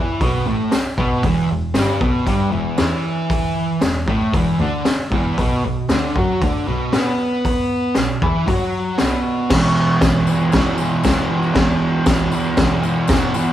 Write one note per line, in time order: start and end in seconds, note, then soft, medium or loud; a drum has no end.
0.00 0.20 E3 medium
0.00 0.21 E4 medium
0.21 0.29 B1 loud
0.21 0.47 B2 loud
0.21 0.47 B3 loud
0.21 kick medium
0.21 open hi-hat soft
0.47 0.56 A1 medium
0.47 0.72 A2 medium
0.47 0.73 A3 medium
0.71 0.83 B1 soft
0.71 muted distorted electric guitar stroke medium
0.71 snare loud
0.71 open hi-hat medium
0.71 tambourine loud
0.98 1.06 B1 medium
0.98 1.24 B2 medium
0.98 1.24 B3 loud
0.98 kick loud
1.23 1.31 E1 medium
1.23 1.49 E2 medium
1.23 1.50 E3 medium
1.23 kick loud
1.23 open hi-hat soft
1.50 1.60 E1 medium
1.50 1.71 E2 medium
1.74 1.84 G1 medium
1.74 2.01 G2 medium
1.74 2.01 G3 loud
1.74 snare loud
1.74 open hi-hat medium
1.74 tambourine loud
2.00 2.09 B1 loud
2.00 2.26 B2 medium
2.00 2.27 B3 loud
2.00 kick loud
2.27 2.35 G1 medium
2.27 2.51 G2 medium
2.27 2.52 G3 loud
2.27 kick medium
2.27 open hi-hat medium
2.52 2.62 E1 medium
2.52 2.78 E2 medium
2.52 2.77 E3 loud
2.78 2.87 E2 medium
2.78 3.82 E3 medium
2.78 3.82 E4 medium
2.78 snare loud
2.78 open hi-hat soft
2.78 tambourine medium
3.30 kick loud
3.30 open hi-hat medium
3.81 3.91 E1 medium
3.81 4.03 E2 medium
3.81 snare loud
3.81 open hi-hat medium
3.81 tambourine medium
4.07 4.15 A1 medium
4.07 4.34 A2 medium
4.07 4.34 A3 loud
4.07 kick loud
4.34 4.42 E1 medium
4.34 4.60 E2 medium
4.34 4.60 E3 loud
4.34 kick loud
4.34 open hi-hat medium
4.59 4.67 D2 medium
4.59 4.86 D3 medium
4.59 4.86 D4 loud
4.85 4.95 E1 soft
4.85 muted distorted electric guitar stroke medium
4.85 snare loud
4.85 open hi-hat medium
4.85 tambourine medium
5.11 5.19 E1 medium
5.11 5.38 E2 medium
5.11 5.38 E3 loud
5.11 kick loud
5.38 5.47 B1 medium
5.38 5.64 B2 medium
5.38 5.64 B3 medium
5.38 kick loud
5.38 open hi-hat medium
5.65 5.73 B1 medium
5.65 5.86 B2 medium
5.89 5.97 D2 medium
5.89 6.16 D3 medium
5.89 6.17 D4 loud
5.89 snare loud
5.89 open hi-hat medium
5.89 tambourine medium
6.16 6.24 F#2 medium
6.16 6.42 F#3 medium
6.16 6.43 F#4 loud
6.16 kick loud
6.42 6.50 D2 medium
6.42 6.67 D3 loud
6.42 6.67 D4 loud
6.42 kick loud
6.42 open hi-hat soft
6.67 6.75 B1 medium
6.67 6.93 B2 medium
6.67 6.92 B3 loud
6.93 7.01 B2 medium
6.93 7.96 B3 medium
6.93 7.97 B4 loud
6.93 snare loud
6.93 open hi-hat medium
6.93 tambourine medium
7.45 kick loud
7.45 open hi-hat medium
7.95 8.05 B1 medium
7.95 8.18 B2 medium
7.95 snare loud
7.95 open hi-hat medium
7.95 tambourine medium
8.22 8.30 E2 medium
8.22 8.47 E3 medium
8.22 8.48 E4 loud
8.22 kick loud
8.47 8.55 F#2 medium
8.47 8.99 F#3 loud
8.47 8.99 F#4 loud
8.47 kick medium
8.47 open hi-hat medium
8.98 9.09 B1 medium
8.98 9.51 B2 medium
8.98 9.51 B3 medium
8.98 snare loud
8.98 open hi-hat medium
8.98 tambourine medium
9.50 9.59 E1 medium
9.50 10.53 E2 medium
9.50 10.29 B2 loud
9.50 10.27 E3 loud
9.50 kick loud
9.50 snare loud
9.50 crash loud
9.50 tambourine soft
9.50 crash medium
10.01 10.10 B1 medium
10.01 kick loud
10.01 snare loud
10.01 tambourine loud
10.01 crash medium
10.14 tambourine soft
10.27 10.54 B2 medium
10.27 10.56 E3 medium
10.27 tambourine medium
10.52 10.61 C#2 medium
10.52 11.04 E2 loud
10.52 10.81 B2 loud
10.52 kick loud
10.52 snare loud
10.52 tambourine medium
10.52 crash medium
10.57 10.79 E3 loud
10.66 tambourine soft
10.78 11.07 E3 medium
10.78 tambourine medium
10.83 11.05 B2 medium
11.04 11.13 C#2 medium
11.04 11.55 E2 medium
11.04 11.32 B2 medium
11.04 kick loud
11.04 snare loud
11.04 tambourine loud
11.04 crash medium
11.08 11.30 E3 medium
11.31 11.56 B2 medium
11.31 11.58 E3 medium
11.43 tambourine soft
11.55 11.63 E1 medium
11.55 12.58 E2 medium
11.55 12.34 B2 medium
11.55 12.32 E3 loud
11.55 kick loud
11.55 snare loud
11.55 tambourine soft
11.55 crash medium
11.69 tambourine soft
12.06 12.15 B1 medium
12.06 kick loud
12.06 snare loud
12.06 tambourine loud
12.06 crash medium
12.19 tambourine soft
12.32 12.58 B2 medium
12.32 12.60 E3 medium
12.32 tambourine medium
12.57 12.66 C#2 medium
12.57 13.09 E2 loud
12.57 12.85 B2 loud
12.57 12.83 E3 loud
12.57 kick loud
12.57 snare loud
12.57 tambourine medium
12.57 crash medium
12.70 tambourine soft
12.83 13.10 B2 medium
12.83 13.12 E3 medium
12.83 tambourine medium
13.08 13.17 E2 medium
13.08 13.53 E2 medium
13.08 13.37 B2 medium
13.08 kick loud
13.08 snare loud
13.08 tambourine loud
13.08 crash medium
13.13 13.35 E3 medium
13.34 13.53 B2 medium
13.34 13.53 E3 medium
13.34 tambourine medium
13.47 tambourine soft